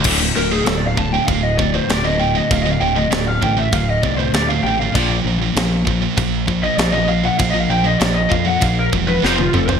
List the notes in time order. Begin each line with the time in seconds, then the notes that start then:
0.04 D1 D2 A2 D3, kick, crash
0.22 D2 A2
0.36 D1 D2 A2 A#4
0.51 D2 A2 G#4
0.66 D1 D2 A2 A4, snare, crash
0.77 D5
0.87 F5
0.97 D2 A2 A5, kick
1.12 D2 A2 G5
1.26 D1 D2 A2 F5, kick, crash
1.43 D#5
1.58 D2 A2 D5, kick
1.74 D2 A2 C5
1.88 D1 D2 A2 D5, snare, crash
2.04 D2 A2 D#5
2.19 D2 A2 G5
2.35 D2 A2 D#5
2.50 D1 D2 A2 F5, kick, crash
2.63 D2 A2 D#5
2.71 F5
2.80 D1 D2 A2 G5
2.95 D2 A2 D#5
3.10 D1 D2 A2 D5, snare, crash
3.27 F5
3.41 A1 D2 A2 G5, kick
3.57 D2 A2 E5
3.72 D1 D2 A2 F5, kick, crash
3.90 D#5
4.02 C2 D2 A2 D5, kick
4.17 D2 A2 C5
4.32 D2 A2 D5, snare, crash
4.47 D2 A2 F5
4.51 D2
4.63 A1 D2 A2 G5
4.67 A2
4.78 D2 A2 F5
4.82 A2
4.93 A#1 A#2 F3 A#3 D5, kick, crash
5.08 A#2 F3
5.23 A#1 A#2 F3
5.27 A#2
5.38 A#2 F3
5.53 A#1 A#2 F3, snare, crash
5.85 A#2 F3, kick
6.01 A#2 F3
6.17 A#1 A#2 F3, kick, crash
6.47 A#2 F3, kick
6.63 A#2 F3 D#5
6.78 A#1 A#2 F3 D5, snare, crash
6.92 A#2 F3 D#5
7.09 A#2 F3 F5
7.24 A#2 F3 F#5
7.38 A#1 A#2 F3 F5, kick, crash
7.50 F3 D#5
7.54 A#2
7.60 F5
7.70 A#1 A#2 F3 G5
7.84 A#2 F3 D#5
8.00 A#1 A#2 F3 D5, snare, crash
8.15 D#5
8.30 F2 A#2 F3 F5, kick
8.46 A#2 F3 F#5
8.61 A#1 A#2 F3 F5, kick, crash
8.79 A#4
8.92 E1 A#2 F3, kick
9.08 A#2 F3 B4
9.23 F1 F2 C3 F3 C5, snare
9.38 F2 C3 F4, high tom
9.53 F1 F2 C3 A4, mid tom
9.69 F2 C3 C5, floor tom